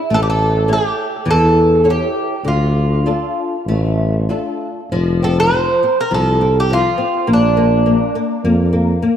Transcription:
Already playing: E4
0.10 A1 A3
0.14 A4
0.23 G4
0.30 A4
0.68 E4 A4 C#5
0.73 G4
1.25 E2 E3
1.31 A4
1.84 E4 A4 C#5
1.90 G4
2.45 D2 D3 F4
3.06 D4 F4 A4
3.67 A1 A3
4.29 D4 F4 A4
4.91 F1 F3
5.23 C4 A4
5.40 C5
5.83 C4
6.01 A#4
6.11 C2 F3 A4
6.41 C4
6.60 G4
6.70 F3 F4
6.98 C4
7.27 A#1 A#3
7.33 D4
7.57 A#3
7.86 A#3
8.15 A#3
8.45 F2 A#3
8.73 A#3
9.02 A#3

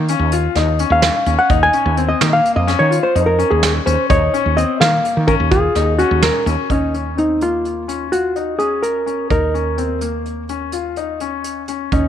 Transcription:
Already playing: D#3
0.08 C#4, closed hi-hat
0.19 D#2
0.32 F4, closed hi-hat
0.55 D#2 D#4, snare, closed hi-hat
0.79 C#4, closed hi-hat
0.90 D#2 F5
1.02 snare, closed hi-hat
1.26 D#2 C#4, closed hi-hat
1.39 F#5
1.50 D#2 D#4, kick, closed hi-hat
1.63 G#5
1.73 C#4, closed hi-hat
1.86 D#2
1.97 C4, closed hi-hat
2.09 D#5
2.21 D#3 A#3, snare, closed hi-hat
2.33 F5
2.45 closed hi-hat
2.56 F2 D#5
2.67 C#4, snare, closed hi-hat
2.79 D#3 C#5
2.91 F4, closed hi-hat
3.03 C5
3.15 F2 D#4, closed hi-hat
3.26 A#4
3.39 C#4, closed hi-hat
3.50 D#2 G#4
3.63 snare, closed hi-hat
3.86 D#2 C#4 C5, closed hi-hat
4.10 D#2 D#4 C#5, kick, closed hi-hat
4.34 C#4, closed hi-hat
4.46 D#2
4.57 C4 D#5, closed hi-hat
4.80 D#3 A#3 F5, snare, closed hi-hat
5.05 closed hi-hat
5.17 D#3
5.27 C#4 A#4, kick, closed hi-hat
5.40 D#2
5.51 F4 G#4, kick, closed hi-hat
5.75 D#2 D#4, snare, closed hi-hat
5.98 C#4 F#4, closed hi-hat
6.11 D#2
6.23 A#4, snare, closed hi-hat
6.46 D#2 C#4, closed hi-hat
6.70 D#2 C#4 D#4, kick, closed hi-hat
6.94 C#4, closed hi-hat
7.17 C4 D#4, closed hi-hat
7.41 A#3 F4, closed hi-hat
7.65 closed hi-hat
7.88 C#4, closed hi-hat
8.12 F4 F#4, closed hi-hat
8.36 D#4, closed hi-hat
8.59 C#4 G#4, closed hi-hat
8.83 A#4, closed hi-hat
9.06 C#4, closed hi-hat
9.30 D#2 D#4 A#4, kick, closed hi-hat
9.54 C#4, closed hi-hat
9.78 C4, closed hi-hat
10.01 A#3, closed hi-hat
10.26 closed hi-hat
10.49 C#4, closed hi-hat
10.72 F4, closed hi-hat
10.96 D#4, closed hi-hat
11.20 C#4, closed hi-hat
11.44 closed hi-hat
11.68 C#4, closed hi-hat
11.92 D#2 C#4 D#4, kick, closed hi-hat

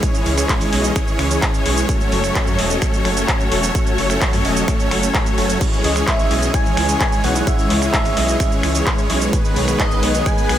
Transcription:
Already playing: G#3 C#4 E4 C#5
0.03 E3 G#3 C#4 G#4 C#5, kick, closed hi-hat, shaker
0.15 shaker
0.26 C#2, open hi-hat
0.38 E3 G#3 C#4 G#4 C#5, finger snap, closed hi-hat, shaker
0.49 kick, clap, closed hi-hat, shaker
0.61 G#1, open hi-hat, shaker
0.73 B1 E3 G#3 C#4 G#4 D#5, open hi-hat
0.84 closed hi-hat, shaker
0.96 E3 G#3 C#4 G#4 C#5, finger snap, kick, closed hi-hat, shaker
1.08 shaker
1.19 C#2, finger snap, open hi-hat
1.31 E3 G#3 C#4 G#4 C#5, closed hi-hat, shaker
1.42 kick, clap, closed hi-hat, shaker
1.54 shaker
1.66 B1 E3 G#3 C#4 G#4 C#5, open hi-hat
1.77 closed hi-hat, shaker
1.89 F#3 A3 C#4 F#4 A4 C#5, kick, closed hi-hat, shaker
2.01 shaker
2.12 F#1, open hi-hat
2.24 F#3 A3 C#4 A4 C#5, finger snap, closed hi-hat, shaker
2.35 kick, clap, closed hi-hat, shaker
2.47 F#2, shaker
2.59 E1 F#3 A3 C#4 A4 D#5, open hi-hat
2.70 closed hi-hat, shaker
2.82 F#3 A3 C#4 A4 C#5, finger snap, kick, closed hi-hat, shaker
2.94 shaker
3.05 F#1, finger snap, open hi-hat
3.17 F#3 A3 C#4 A4 C#5, closed hi-hat, shaker
3.28 kick, clap, closed hi-hat, shaker
3.40 shaker
3.52 E1 F#3 A3 C#4 A4 C#5, open hi-hat
3.63 closed hi-hat, shaker
3.75 F#3 A3 C#4 A4 C#5, kick, closed hi-hat, shaker
3.87 closed hi-hat, shaker
3.98 F#1, open hi-hat
4.10 F#3 A3 C#4 A4 C#5, finger snap, closed hi-hat, shaker
4.21 kick, clap, closed hi-hat, shaker
4.33 F#2, open hi-hat, shaker
4.45 E1 F#3 A3 C#4 A4 D#5, open hi-hat
4.56 closed hi-hat, shaker
4.68 F#3 A3 C#4 A4 C#5, finger snap, kick, closed hi-hat, shaker
4.80 closed hi-hat, shaker
4.91 F#1, finger snap, open hi-hat
5.03 F#3 A3 C#4 A4 C#5, closed hi-hat, shaker
5.15 kick, clap, closed hi-hat, shaker
5.26 closed hi-hat, shaker
5.38 F#1 F#3 A3 C#4 A4 C#5, open hi-hat
5.49 closed hi-hat, shaker
5.61 E3 G#3 C#4 E4 G#4 C#5, kick, closed hi-hat, crash, shaker
5.73 shaker
5.84 C#2 D#5, open hi-hat
5.96 E3 G#3 C#4 G#4 C#5, finger snap, closed hi-hat, shaker
6.07 E5, kick, clap, closed hi-hat, shaker
6.19 G#1, shaker
6.31 B1 E3 G#3 C#4 G#4 D#5, open hi-hat
6.42 closed hi-hat, shaker
6.54 E3 G#3 C#4 G#4 C#5 G#5, finger snap, kick, closed hi-hat, shaker
6.66 shaker
6.77 C#2, finger snap, open hi-hat
6.89 E3 G#3 C#4 G#4 C#5, closed hi-hat, shaker
7.01 kick, clap, closed hi-hat, shaker
7.12 shaker
7.24 B1 E3 G#3 C#4 G#4 C#5 F#5, open hi-hat
7.35 closed hi-hat, shaker
7.47 E3 G#3 C#4 G#4 C#5 E5, kick, closed hi-hat, shaker
7.59 shaker
7.70 C#2, open hi-hat
7.82 E3 G#3 C#4 G#4 C#5, finger snap, closed hi-hat, shaker
7.94 E5, kick, clap, closed hi-hat, shaker
8.05 G#1, open hi-hat, shaker
8.17 B1 E3 G#3 C#4 G#4 D#5, open hi-hat
8.28 closed hi-hat, shaker
8.40 E3 G#3 C#4 G#4 C#5, finger snap, kick, closed hi-hat, shaker
8.52 shaker
8.63 C#2, finger snap, open hi-hat
8.75 E3 G#3 C#4 G#4 C#5, closed hi-hat, shaker
8.87 kick, clap, closed hi-hat, shaker
8.98 shaker
9.10 B1 E3 G#3 C#4 G#4 C#5, open hi-hat
9.21 closed hi-hat, shaker
9.33 D#3 G#3 B3 D#4 G#4 B4, kick, closed hi-hat, shaker
9.45 shaker
9.56 B1 C#5, open hi-hat
9.68 D#3 G#3 B3 G#4 B4, finger snap, shaker
9.79 D#5, kick, clap, closed hi-hat, shaker
9.91 F#1, shaker
10.03 B1 D#3 G#3 B3 G#4 C#5, open hi-hat
10.14 closed hi-hat, shaker
10.26 D#3 G#3 B3 G#4 B4 G#5, finger snap, kick, closed hi-hat, shaker
10.38 shaker
10.49 B1, finger snap, open hi-hat

